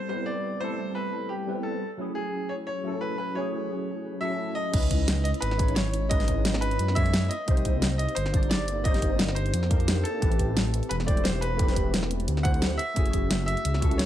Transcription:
Already playing: tine electric piano G3 B3 C4 E4 A4
0.08 tine electric piano G3 B3 C4 E4, grand piano C5
0.12 tine electric piano B4
0.26 grand piano D5
0.60 tine electric piano G3 A3 C4 E4, grand piano C5
0.64 tine electric piano A4
0.95 grand piano B4
1.29 grand piano G4
1.47 tine electric piano G3 B3 C4 E4 B4
1.63 grand piano A4
1.97 tine electric piano F#3 A3 C#4 E4
2.01 tine electric piano G#4
2.15 grand piano G#4
2.49 grand piano C#5
2.67 grand piano C#5
2.83 tine electric piano F#3 A3 C#4 E4 A4
3.01 grand piano B4
3.18 grand piano B4
3.34 tine electric piano F#3 A3 C#4 E4, grand piano C#5
3.38 tine electric piano G#4
4.20 tine electric piano F#3 A3 C#4 E4, grand piano E5
4.24 tine electric piano A4
4.55 grand piano D#5
4.71 detuned saw bass C#2, tine electric piano G#3 C#4 D#4 E4, kick, closed hi-hat, crash
4.76 tine electric piano B4
4.83 closed hi-hat
4.91 kick, closed hi-hat
5.08 snare, closed hi-hat
5.24 grand piano D#5, closed hi-hat
5.34 closed hi-hat
5.40 detuned saw bass G#1, grand piano B4, closed hi-hat
5.51 snare
5.57 tine electric piano G#3 C#4 D#4 E4, kick, closed hi-hat
5.61 tine electric piano C#5
5.68 closed hi-hat
5.75 grand piano C#5, snare, closed hi-hat
5.94 closed hi-hat
6.09 tine electric piano G#3 C#4 D#4 E4, grand piano D#5, kick, closed hi-hat
6.13 tine electric piano B4
6.20 snare, closed hi-hat
6.28 kick, closed hi-hat
6.45 snare, closed hi-hat
6.54 snare
6.61 grand piano B4, closed hi-hat
6.71 closed hi-hat
6.79 detuned saw bass F#2, closed hi-hat
6.88 snare
6.95 tine electric piano G#3 B3 C#4 E4 C#5, grand piano E5, kick, closed hi-hat
7.06 closed hi-hat
7.14 snare, closed hi-hat
7.29 grand piano D#5, closed hi-hat
7.46 detuned saw bass C2, tine electric piano A#3 C4 D#4 G4, kick, closed hi-hat
7.50 tine electric piano C5
7.57 closed hi-hat
7.65 kick, closed hi-hat
7.82 snare, closed hi-hat
7.98 grand piano D#5, closed hi-hat
8.09 closed hi-hat
8.15 detuned saw bass G1, grand piano C5, closed hi-hat
8.26 snare
8.32 tine electric piano A#3 D4 D#4 G4, kick, closed hi-hat
8.36 tine electric piano D5
8.43 closed hi-hat
8.49 grand piano D5, snare, closed hi-hat
8.68 closed hi-hat
8.83 tine electric piano A#3 C4 D#4 G4, grand piano D#5, kick, closed hi-hat
8.87 tine electric piano C5
8.94 snare, closed hi-hat
9.02 kick, closed hi-hat
9.19 snare, closed hi-hat
9.28 snare
9.35 grand piano C5, closed hi-hat
9.46 closed hi-hat
9.53 detuned saw bass F2, closed hi-hat
9.63 snare
9.69 tine electric piano A#3 D4 D#4 G4 A#4, kick, closed hi-hat
9.80 closed hi-hat
9.88 snare, closed hi-hat
10.04 grand piano A4, closed hi-hat
10.20 detuned saw bass A1, tine electric piano A3 C4 E4 G4, kick, closed hi-hat
10.24 tine electric piano B4
10.32 closed hi-hat
10.39 kick, closed hi-hat
10.57 snare, closed hi-hat
10.74 closed hi-hat
10.83 closed hi-hat
10.89 detuned saw bass E1, grand piano B4, closed hi-hat
11.00 snare
11.05 tine electric piano A3 C4 E4 G4, grand piano D5, kick, closed hi-hat
11.09 tine electric piano C5
11.17 closed hi-hat
11.24 grand piano C5, snare, closed hi-hat
11.41 grand piano B4, closed hi-hat
11.57 tine electric piano A3 C4 E4 G4, kick, closed hi-hat
11.61 tine electric piano B4
11.68 snare, closed hi-hat
11.76 kick, closed hi-hat
11.94 snare, closed hi-hat
12.03 snare
12.11 closed hi-hat
12.20 closed hi-hat
12.28 detuned saw bass D2, closed hi-hat
12.37 snare
12.43 tine electric piano A3 C4 E4 G4 C5, grand piano F#5, kick, closed hi-hat
12.54 closed hi-hat
12.62 snare, closed hi-hat
12.78 grand piano E5, closed hi-hat
12.94 detuned saw bass F#1, tine electric piano A3 C#4 E4 F#4, kick, closed hi-hat
12.98 tine electric piano G#4
13.06 closed hi-hat
13.13 kick, closed hi-hat
13.31 snare, closed hi-hat
13.46 grand piano E5, closed hi-hat
13.57 closed hi-hat
13.65 detuned saw bass C#2, closed hi-hat
13.74 snare
13.80 tine electric piano A3 C#4 E4 F#4, kick, closed hi-hat
13.84 tine electric piano A4
13.91 closed hi-hat
13.98 grand piano C#5, snare, closed hi-hat

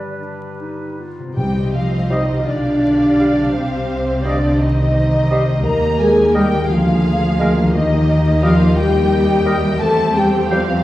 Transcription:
Already playing: harp G2 D3 D4, bassoon G3, oboe B4, flute D5
0.20 clarinet D4, harp G4
0.60 harp D4, clarinet D#4
0.99 harp B3, clarinet F4
1.19 harp C3
1.23 harp C4
1.28 harp D#4
1.33 double bass section C2, viola section C4, harp G4, violin section D#5 G5, flute G5
1.37 timpani C3, cello section G3, viola section G4, french horn section G4
1.74 cello section F3, french horn section F4, violin section F5, flute F5
2.10 cello section D#3, bassoon G3, french horn section D#4, clarinet C5, flute D#5, oboe D#5, violin section D#5
2.29 harp B2
2.33 harp D4
2.38 harp F4
2.42 viola section D4, harp G4, flute D5
2.46 double bass section B1, cello section D3, french horn section D4, violin section D5 F5
3.20 bassoon G3, clarinet D5, oboe F5
3.36 harp C3
3.40 harp C4
3.44 harp D#4
3.49 harp G4, flute C5
3.53 double bass section C2, cello section C3, french horn section C4, viola section C4, violin section C5
4.22 cello section D3, bassoon G3, french horn section D4, clarinet C5, flute D5, violin section D5, oboe D#5
4.58 cello section D#3, french horn section D#4, violin section D#5, flute D#5
5.29 bassoon G3, clarinet C5, oboe D#5
5.46 harp D#3
5.51 harp A#3
5.55 harp D#4
5.59 harp G4
5.64 double bass section D#2, cello section A#3, viola section A#3 G4, french horn section A#4, flute A#5, violin section A#5
5.98 cello section G#3, flute G#5, violin section G#5
6.02 french horn section G#4
6.35 cello section G3, bassoon G3, french horn section G4, clarinet A#4, oboe D#5, violin section G5, flute G5
6.51 harp D3
6.56 harp A#3
6.61 harp F4
6.65 harp G#4, flute F5, violin section F5
6.69 double bass section D2, cello section F3, french horn section F4, viola section G#4, violin section F5
7.40 bassoon G#3, clarinet A#4, oboe F5
7.55 harp D#3
7.59 harp A#3
7.64 harp D#4
7.69 harp G4, violin section D#5
7.73 double bass section D#2, cello section D#3, french horn section D#4, viola section G4, violin section D#5, flute D#5
8.43 cello section F3, bassoon G3, french horn section F4, clarinet A#4, oboe D#5, flute F5, violin section F5
8.77 cello section G3, french horn section G4, flute G5, violin section G5
9.46 bassoon G3, clarinet A#4, oboe D#5
9.64 harp E3
9.68 harp G3
9.73 harp C4
9.77 double bass section E2, harp G4, french horn section A4, violin section A5
9.82 cello section A3, viola section C4, violin section C5, flute A5
10.16 cello section G3, french horn section G4, violin section G5, flute G5
10.50 cello section F3, bassoon G3, french horn section F4, clarinet C5, violin section F5, flute F5, oboe G5

